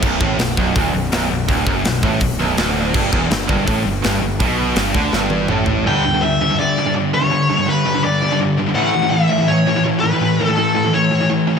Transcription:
0.02 B0 B1, kick, crash
0.21 A1 A2, kick
0.39 B0 B1, snare, open hi-hat
0.57 B0 B1, kick
0.76 D1 D2, kick, open hi-hat
0.93 B0 B1
1.12 B0 B1, snare, open hi-hat
1.30 B0 B1
1.49 D1 D2, kick, open hi-hat
1.66 F#1 F#2, kick
1.85 B0 B1, snare, open hi-hat
2.03 A1 A2, kick
2.20 B0 B1, kick, open hi-hat
2.39 B0 B1
2.57 D1 D2, snare, open hi-hat
2.94 G1 G2, kick, crash
3.12 E1 E2, kick
3.31 G1 G2, snare, open hi-hat
3.49 G1 G2, kick
3.67 A1 A2, kick, open hi-hat
3.86 G1 G2
4.04 G1 G2, snare, open hi-hat
4.22 G1 G2
4.40 B1 B2, kick, open hi-hat
4.76 G1 G2, snare, open hi-hat
4.94 D2 D3, kick
5.12 G1 G2, snare
5.30 high tom
5.48 A1 A2, mid tom
5.66 floor tom
5.86 G2 D3 G3 G5
6.05 G2 D3
6.14 G2 D3
6.22 G2 D3 E5
6.41 G2 D3
6.50 G2 D3
6.59 G2 D3 G3 D5
6.78 G2 D3
6.86 G2 D3
6.96 G2 D3
7.13 G2 D3 C#5
7.23 G2 D3
7.31 G2 D3 G3
7.50 G2 D3
7.59 G2 D3
7.68 G2 D3 B4
7.86 G2 D3
7.95 G2 D3
8.04 G2 D3 G3 D5
8.23 G2 D3
8.31 G2 D3
8.40 G2 D3
8.58 G2 D3
8.66 G2 D3
8.74 A2 E3 A3 F#5
8.80 A3
8.92 A2 E3
9.02 A2 E3
9.10 A2 E3 E5
9.29 A2 E3
9.38 A2 E3
9.42 A2
9.47 A2 E3 C#5
9.52 A3
9.66 A2 E3
9.75 A2 E3
9.85 A2 E3
10.00 A2 E3 B4
10.13 A2 E3
10.21 A2 E3 A3
10.40 A2 E3
10.45 A2 E3 A4
10.56 A2 E3 A4
10.75 A2 E3
10.84 A2 E3
10.93 A2 E3 A3 C#5
11.11 A2 E3
11.21 A2 E3
11.30 A2 E3
11.48 A2 E3

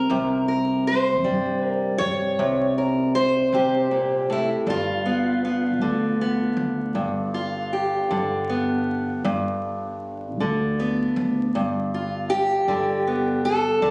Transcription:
Already playing: G3 A#4
0.10 C2 C3
0.48 A#4
0.87 C5
1.23 G2 G3
1.66 A#4
1.98 G2 C#5
2.39 C2 C3
2.78 A#4
3.15 C5
3.53 C3 G4
3.91 A#2
4.30 A2 E4
4.67 G1 G2 F4
5.06 B3
5.45 B3
5.81 D2 D3
6.21 B3
6.57 D2
6.95 G1 G2
7.34 F4
7.73 G4
8.11 G2 D3
8.49 B3
9.24 G1 G2
10.39 D2 D3
10.80 B3
11.16 D2
11.55 G1 G2
11.94 F4
12.30 G4
12.68 G2 D3
13.07 B3
13.45 A4
13.82 D2 D3

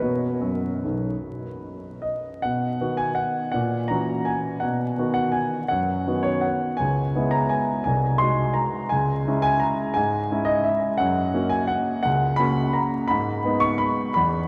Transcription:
0.00 B2 B3 F#4 B4
0.41 F#2
0.84 B1
2.02 D#5
2.42 B2 F#5
2.81 D#3 B3 F#4
2.97 G#5
3.15 F#5
3.52 A#2 F#5
3.88 E3 C#4 F#4 A#5
4.25 G#5
4.60 B2 F#5
4.98 D#3 B3 F#4
5.14 F#5
5.32 G#5
5.68 F#2 F#5
6.07 D#3 B3 F#4
6.23 C#5
6.41 F#5
6.77 C#2 G#5
7.15 G#3 B3 E4
7.31 A#5
7.49 G#5
7.84 C2 G#5
8.18 G#3 D#4 F#4 C6
8.54 A#5
8.89 C#2 G#5
9.26 G#3 C#4 E4
9.42 G#5
9.60 A#5
9.94 G#2 G#5
10.30 G#3 C#4 E4
10.45 D#5
10.64 E5
10.98 F#2 F#5
11.34 A#3 C#4 F#4
11.49 G#5
11.67 F#5
12.03 C#2 F#5
12.36 A#3 C#4 F#4 B5
12.73 A#5
13.08 G#2 B5
13.44 G#3 B3 D#4
13.60 C#6
13.78 B5
14.14 E2 B5

